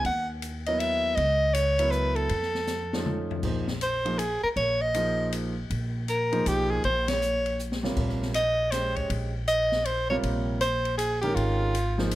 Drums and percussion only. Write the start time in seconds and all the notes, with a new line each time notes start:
0.05 ride
0.42 hi-hat pedal, ride
0.66 ride
0.80 ride
1.17 ride
1.55 hi-hat pedal, ride
1.79 ride
1.92 hi-hat pedal
2.16 ride
2.29 ride
2.42 snare
2.55 snare
2.67 snare, hi-hat pedal
2.93 snare
3.06 mid tom
3.31 floor tom
3.43 kick, crash
3.68 snare
3.81 hi-hat pedal, ride
4.06 ride
4.19 hi-hat pedal, ride
4.56 ride
4.94 hi-hat pedal, ride
5.33 hi-hat pedal, ride
5.71 ride
6.08 hi-hat pedal, ride
6.33 ride
6.46 hi-hat pedal, ride
6.84 ride
7.08 snare, ride
7.22 hi-hat pedal
7.46 ride
7.59 hi-hat pedal
7.72 snare
7.84 snare
7.97 kick, crash
8.09 snare
8.22 snare
8.34 hi-hat pedal, ride
8.72 snare, hi-hat pedal, ride
8.96 kick, ride
9.10 ride
9.48 hi-hat pedal, ride
9.72 snare
9.85 ride
10.23 ride
10.61 hi-hat pedal, ride
10.85 ride
10.99 hi-hat pedal, ride
11.23 ride
11.37 ride
11.75 hi-hat pedal, ride
11.98 snare
12.11 hi-hat pedal, ride